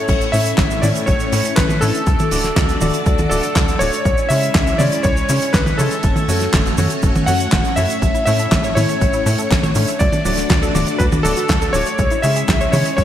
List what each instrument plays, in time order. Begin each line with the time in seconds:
Already playing: grand piano A2 A3 C#4 E4 E5, electric grand piano C#5
0.08 analog synth bass A1, string machine A3 C#4 E4 C#5, kick, closed hi-hat, crash, cabasa
0.21 closed hi-hat, cabasa
0.32 analog synth bass A2, grand piano A2 A3 C#4 E4 C#5, electric grand piano E5, open hi-hat, cabasa
0.45 closed hi-hat, cabasa
0.58 analog synth bass A1, kick, snare, clap, closed hi-hat, cabasa
0.70 closed hi-hat, cabasa
0.82 analog synth bass A2, grand piano A2 A3 C#4 E4 C#5, electric grand piano D5, open hi-hat, high tom, cabasa
0.95 closed hi-hat, cabasa
1.06 analog synth bass A1, electric grand piano C#5, kick, closed hi-hat, cabasa
1.20 closed hi-hat, cabasa
1.32 grand piano A2 A3 C#4 E4 C#5, analog synth bass A2, open hi-hat, cabasa
1.45 closed hi-hat, cabasa
1.56 analog synth bass A1, electric grand piano B4, kick, snare, clap, closed hi-hat, cabasa
1.69 closed hi-hat, high tom, cabasa
1.81 analog synth bass A2, grand piano D3 A3 C#4 E4 C#5, electric grand piano A4, open hi-hat, cabasa
1.94 closed hi-hat, cabasa
2.07 analog synth bass D2, string machine D4 F#4 D5, kick, closed hi-hat, cabasa
2.19 closed hi-hat, high tom, cabasa
2.31 analog synth bass D1, grand piano D3 A3 D4 F#4 D5, open hi-hat, cabasa
2.44 snare, closed hi-hat, cabasa
2.56 analog synth bass D2, kick, snare, clap, closed hi-hat, cabasa
2.69 closed hi-hat, cabasa
2.81 analog synth bass D1, grand piano D3 A3 D4 F#4 D5, open hi-hat, high tom, cabasa
2.94 closed hi-hat, cabasa
3.06 analog synth bass D2, kick, closed hi-hat, cabasa
3.18 closed hi-hat, high tom, cabasa
3.30 analog synth bass D1, grand piano D3 A3 D4 F#4 D5, electric grand piano A4, open hi-hat, cabasa
3.43 closed hi-hat, cabasa
3.56 analog synth bass D2, kick, snare, clap, closed hi-hat, cabasa
3.68 closed hi-hat, cabasa
3.79 analog synth bass D1, grand piano A3 D4 F#4 D5, electric grand piano C#5, open hi-hat, cabasa
3.93 closed hi-hat, cabasa
4.05 analog synth bass C#2, string machine G#3 C#4 E4 C#5, kick, closed hi-hat, cabasa
4.18 closed hi-hat, cabasa
4.29 grand piano C#3 G#3 C#4 E4 C#5, analog synth bass C#3, electric grand piano E5, open hi-hat, cabasa
4.43 closed hi-hat, cabasa
4.55 analog synth bass C#2, kick, snare, clap, closed hi-hat, cabasa
4.67 closed hi-hat, cabasa
4.78 grand piano C#3 G#3 C#4 E4 C#5, analog synth bass C#3, electric grand piano D5, open hi-hat, high tom, cabasa
4.92 closed hi-hat, cabasa
5.03 analog synth bass C#2, electric grand piano C#5, kick, closed hi-hat, cabasa
5.17 closed hi-hat, cabasa
5.29 grand piano C#3 G#3 C#4 E4 C#5, analog synth bass C#3, open hi-hat, cabasa
5.41 closed hi-hat, cabasa
5.53 analog synth bass C#2, electric grand piano B4, kick, snare, clap, closed hi-hat, cabasa
5.66 closed hi-hat, high tom, cabasa
5.78 analog synth bass C#3, grand piano G#3 C#4 E4 C#5, electric grand piano A4, open hi-hat, cabasa
5.91 closed hi-hat, cabasa
6.03 analog synth bass F#1, string machine A3 F#4, kick, closed hi-hat, cabasa
6.16 closed hi-hat, high tom, cabasa
6.29 analog synth bass F#2, grand piano A3 C#4 F#4 C#5, open hi-hat, cabasa
6.40 snare, closed hi-hat, cabasa
6.53 analog synth bass F#1, kick, snare, clap, closed hi-hat, cabasa
6.66 closed hi-hat, cabasa
6.78 analog synth bass F#2, grand piano A3 C#4 F#4 C#5, open hi-hat, high tom, cabasa
6.90 closed hi-hat, cabasa
7.02 analog synth bass F#1, kick, closed hi-hat, cabasa
7.15 closed hi-hat, high tom, cabasa
7.26 analog synth bass F#2, grand piano A3 C#4 F#4 C#5, electric grand piano F#5, open hi-hat, cabasa
7.40 closed hi-hat, cabasa
7.52 analog synth bass F#1, kick, snare, clap, closed hi-hat, cabasa
7.64 closed hi-hat, cabasa
7.76 analog synth bass F#2, grand piano A2 A3 C#4 F#4 C#5, electric grand piano E5, open hi-hat, cabasa
7.90 closed hi-hat, cabasa
8.02 analog synth bass A1, synth arpeggio sound A3, string machine A3 E4, kick, closed hi-hat, cabasa
8.15 synth arpeggio sound E4, closed hi-hat, cabasa
8.26 analog synth bass A2, grand piano A2 A3 C#4 E4 C#5, synth arpeggio sound A3, electric grand piano E5, open hi-hat, cabasa
8.39 synth arpeggio sound A4, closed hi-hat, cabasa
8.52 analog synth bass A1, synth arpeggio sound A3, kick, snare, clap, closed hi-hat, cabasa
8.63 synth arpeggio sound C#5, closed hi-hat, cabasa
8.75 grand piano A2 A3 C#4 E4 C#5, analog synth bass A2, synth arpeggio sound A3, electric grand piano C#5, open hi-hat, high tom, cabasa
8.89 synth arpeggio sound E5, closed hi-hat, cabasa
9.01 analog synth bass A1, synth arpeggio sound A3, kick, closed hi-hat, cabasa
9.13 synth arpeggio sound E4, closed hi-hat, cabasa
9.26 analog synth bass A2, grand piano A2 A3 C#4 E4 C#5, synth arpeggio sound A3, open hi-hat, cabasa
9.38 synth arpeggio sound A4, closed hi-hat, cabasa
9.51 analog synth bass A1, synth arpeggio sound A3, kick, snare, clap, closed hi-hat, cabasa
9.63 synth arpeggio sound C#5, closed hi-hat, high tom, cabasa
9.75 analog synth bass A2, grand piano D3 A3 C#4 E4 C#5, synth arpeggio sound A3, open hi-hat, cabasa
9.88 synth arpeggio sound E5, closed hi-hat, cabasa
9.99 analog synth bass D2, synth arpeggio sound F#3, string machine D4 F#4 D5, electric grand piano D5, kick, closed hi-hat, cabasa
10.12 synth arpeggio sound D4, closed hi-hat, high tom, cabasa
10.25 analog synth bass D1, grand piano D3 A3 D4 F#4 D5, synth arpeggio sound F#3, open hi-hat, cabasa
10.37 synth arpeggio sound F#4, snare, closed hi-hat, cabasa
10.50 analog synth bass D2, synth arpeggio sound F#3, kick, snare, clap, closed hi-hat, cabasa
10.62 synth arpeggio sound A4, closed hi-hat, cabasa
10.75 analog synth bass D1, grand piano D3 A3 D4 F#4 D5, synth arpeggio sound F#3, open hi-hat, high tom, cabasa
10.87 synth arpeggio sound D5, closed hi-hat, cabasa
10.98 analog synth bass D2, synth arpeggio sound F#3, electric grand piano B4, kick, closed hi-hat, cabasa
11.12 synth arpeggio sound D4, closed hi-hat, high tom, cabasa
11.23 analog synth bass D1, grand piano D3 A3 D4 F#4 D5, synth arpeggio sound F#3, electric grand piano A4, open hi-hat, cabasa
11.36 synth arpeggio sound F#4, closed hi-hat, cabasa
11.49 analog synth bass D2, synth arpeggio sound F#3, kick, snare, clap, closed hi-hat, cabasa
11.62 synth arpeggio sound A4, closed hi-hat, cabasa
11.73 analog synth bass D1, synth arpeggio sound F#3, grand piano A3 D4 F#4 D5, electric grand piano C#5, open hi-hat, cabasa
11.86 synth arpeggio sound D5, closed hi-hat, cabasa
11.98 analog synth bass C#2, string machine G#3 C#4 E4 C#5, synth arpeggio sound G#3, kick, closed hi-hat, cabasa
12.10 synth arpeggio sound E4, closed hi-hat, cabasa
12.22 analog synth bass C#3, grand piano C#3 G#3 C#4 E4 C#5, synth arpeggio sound G#3, electric grand piano E5, open hi-hat, cabasa
12.36 synth arpeggio sound G#4, closed hi-hat, cabasa
12.48 analog synth bass C#2, synth arpeggio sound G#3, kick, snare, clap, closed hi-hat, cabasa
12.61 synth arpeggio sound C#5, closed hi-hat, cabasa
12.72 grand piano C#3 G#3 C#4 E4 C#5, analog synth bass C#3, synth arpeggio sound G#3, electric grand piano C#5, open hi-hat, high tom, cabasa
12.85 synth arpeggio sound E5, closed hi-hat, cabasa
12.97 analog synth bass C#2, synth arpeggio sound G#3, electric grand piano C#5, kick, closed hi-hat, cabasa